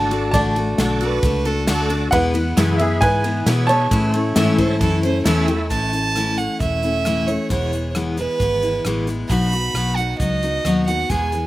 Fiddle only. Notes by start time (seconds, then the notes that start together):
1.02 B4
1.46 A4
1.69 A4
4.36 E5
4.58 C5
4.80 A4
5.03 C5
5.26 A4
5.70 A5
6.38 F#5
6.61 E5
7.28 C#5
7.51 C#5
8.18 B4
9.28 B5
9.96 F#5
10.18 D#5
10.86 F#5
11.10 G#5